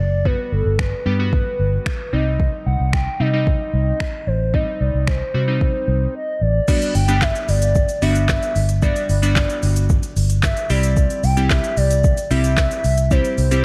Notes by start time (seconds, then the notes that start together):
0.00 F#1 D5
0.25 G3 B3 F#4 B4, kick
0.46 B4
0.52 G1 A4
0.66 G1
0.79 B4, finger snap, kick
1.06 G2 G3 B3 G4
1.19 G3 B3 F#4
1.33 kick
1.59 G1
1.86 finger snap, kick
2.13 C2 G3 C4 D#4 D#5
2.40 kick
2.66 C2 F#5
2.80 C2
2.93 G5, finger snap, kick
3.20 C3 G3 C4 D#4 D#5
3.33 G3 C4 D#4
3.47 kick
3.74 C2
4.00 finger snap, kick
4.27 A1 C5
4.54 G3 C4 D#4 D#5, kick
4.81 C2 D5
4.94 C2
5.07 C5, finger snap, kick
5.34 C3 G3 C4 F#4
5.47 G3 C4 D#4
5.61 kick
5.88 C2
6.15 D#5
6.41 A1 D5
6.68 G3 B3 D4 F#4, kick, crash, shaker
6.82 closed hi-hat, shaker
6.95 G1 G5, open hi-hat, shaker
7.08 G3 B3 D4 G4, closed hi-hat, shaker
7.22 E5, kick, snare, clap, shaker
7.35 closed hi-hat, shaker
7.49 G1 D5, open hi-hat, shaker
7.62 closed hi-hat, shaker
7.75 kick, shaker
7.89 closed hi-hat, shaker
8.02 G1 G3 B3 D4 F#4 E5, open hi-hat, shaker
8.15 closed hi-hat, shaker
8.29 kick, snare, clap, shaker
8.43 closed hi-hat, shaker
8.56 G1, open hi-hat, shaker
8.69 closed hi-hat, shaker
8.82 G3 B3 D4 F#4 D5, kick, shaker
8.96 closed hi-hat, shaker
9.09 G1 D5, open hi-hat, shaker
9.22 G3 B3 D4 F#4, closed hi-hat, shaker
9.36 kick, snare, clap, shaker
9.50 closed hi-hat, shaker
9.63 G1, open hi-hat, shaker
9.76 closed hi-hat, shaker
9.90 kick, shaker
10.03 closed hi-hat, shaker
10.16 G1, open hi-hat, shaker
10.30 closed hi-hat, shaker
10.43 E5, kick, snare, clap, shaker
10.57 closed hi-hat, shaker
10.70 C2 G3 C4 E4 G4 D5, open hi-hat, shaker
10.83 closed hi-hat, shaker
10.97 kick, shaker
11.10 closed hi-hat, shaker
11.24 C2 G5, open hi-hat, shaker
11.37 G3 C4 E4 G4, closed hi-hat, shaker
11.50 E5, kick, snare, clap, shaker
11.64 closed hi-hat, shaker
11.77 C2 D5, open hi-hat, shaker
11.91 closed hi-hat, shaker
12.04 kick, shaker
12.17 closed hi-hat, shaker
12.31 C2 G3 C4 E4 G4 E5, open hi-hat, shaker
12.44 closed hi-hat, shaker
12.57 kick, snare, clap, shaker
12.71 closed hi-hat, shaker
12.84 C2, open hi-hat, shaker
12.98 closed hi-hat, shaker
13.11 G3 C4 E4 G4 C5, kick, shaker
13.25 closed hi-hat, shaker
13.38 C2 C5, open hi-hat, shaker
13.51 G3 C4 E4 G4, closed hi-hat, shaker